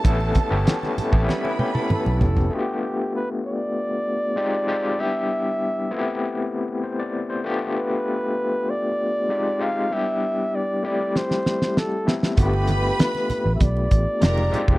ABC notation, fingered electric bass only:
X:1
M:4/4
L:1/16
Q:1/4=97
K:Gmix
V:1 name="Fingered electric bass" clef=bass
A,,,2 z G,,, z3 A,,, z4 z B,,, F,,,2 | z16 | z16 | z16 |
z16 | G,,,4 z3 A,,, B,,,2 A,,, z F,,,2 z F,,, |]